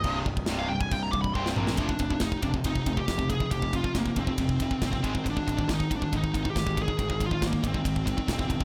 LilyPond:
<<
  \new Staff \with { instrumentName = "Lead electric guitar" } { \time 4/4 \key f \dorian \tempo 4 = 139 << { ees''16 r4 f''16 g''16 aes''16 g''16 bes''16 d'''16 b''16 c'''8 r8 | r1 | r1 | r1 |
r1 | } \\ { r2. c'4 | d'4 ees'8 d'8 ees'8. g'8. aes'8 | g'8 f'8 bes8 c'4. c'4 | d'4 ees'8 d'8 ees'8. g'8. aes'8~ |
aes'8 f'8 bes8 c'4. c'4 | } >> }
  \new Staff \with { instrumentName = "Distorted electric guitar" } { \clef bass \time 4/4 \key f \dorian <c, g, c>8 <c, g,>8 <c, g, c>8 <c, g,>8 <c, g,>8 <c, g,>8 <c, g, c>8 <bes, f bes>8 | <f, c f>16 <f, c>16 <f, c>16 <f, c>16 <f, c>8 <f, c>16 <f, c>16 <f, c>8 <f, c>16 <f, c>16 <f, c>16 <f, c>16 <f, c>16 <f, c>16 | <f, c>16 <f, c>16 <f, c>16 <f, c>16 <f, c>8 <f, c>16 <f, c>16 <f, c>8 <f, c>16 <f, c>16 <f, c>16 <f, c>16 <aes, ees aes>16 <aes, ees>16 | <aes, ees>16 <aes, ees>16 <aes, ees>16 <aes, ees>16 <aes, ees>8 <aes, ees>16 <aes, ees>16 <aes, ees>8 <aes, ees>16 <aes, ees>16 <aes, ees>16 <aes, ees>16 <aes, ees>16 <aes, ees>16 |
<aes, ees>16 <aes, ees>16 <aes, ees>16 <aes, ees>16 <aes, ees>8 <aes, ees>16 <aes, ees>16 <aes, ees>8 <aes, ees>16 <aes, ees>16 <aes, ees>16 <aes, ees>16 <aes, ees>16 <aes, ees>16 | }
  \new Staff \with { instrumentName = "Picked electric bass" } { \clef bass \time 4/4 \key f \dorian c,,8 c,,8 c,,8 c,,8 c,,8 c,,8 c,,8 bes,,8 | f,,8 f,,8 f,,8 f,,8 f,,8 f,,8 f,,4 | f,,4 f,,8 f,,8 f,,4 g,,8 aes,,8 | aes,,8 aes,,8 aes,,8 aes,,8 aes,,8 aes,,8 aes,,4 |
aes,,4 aes,,8 aes,,8 aes,,4 e,,4 | }
  \new DrumStaff \with { instrumentName = "Drums" } \drummode { \time 4/4 <cymc bd>8 bd16 bd16 <cymc sn>8. bd16 <cymc bd>8 bd16 bd16 bd16 sn16 toml16 sn16 | <bd cymr>16 bd16 <bd cymr>16 bd16 <bd cymr sn>16 bd16 <bd cymr>16 bd16 <bd cymr>16 bd16 <bd cymr>16 bd16 <bd cymr sn>16 bd16 <bd cymr>16 bd16 | <bd cymr>16 bd16 <bd cymr>16 bd16 <bd cymr sn>16 bd16 <bd cymr>16 bd16 <bd cymr>16 bd16 <bd cymr>16 bd16 <bd cymr sn>16 bd16 <bd cymr>16 bd16 | <bd cymr>16 bd16 <bd cymr>16 bd16 <bd cymr sn>16 bd16 <bd cymr>16 bd16 <bd cymr>16 bd16 <bd cymr>16 bd16 <bd cymr sn>16 bd16 <bd cymr>16 bd16 |
<bd cymr>16 bd16 <bd cymr>16 bd16 <bd cymr sn>16 bd16 <bd cymr>16 bd16 <bd cymr>16 bd16 <bd cymr>16 bd16 <bd cymr sn>16 bd16 <bd cymr>16 bd16 | }
>>